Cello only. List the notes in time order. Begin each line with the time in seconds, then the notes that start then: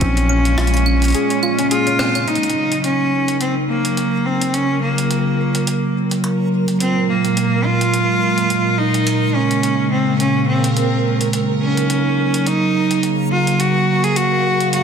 Already playing: C#4
1.71 F4
2.28 D#4
2.85 C#4
3.41 C4
3.70 A#3
4.26 C4
4.54 C#4
4.83 A#3
6.81 C4
7.09 A#3
7.65 F4
8.78 D#4
9.35 C#4
9.91 C4
10.20 C#4
10.48 C4
10.77 C4
11.62 C#4
12.47 D#4
13.32 F4
13.60 F#4
14.04 G#4
14.16 F#4
14.73 F#4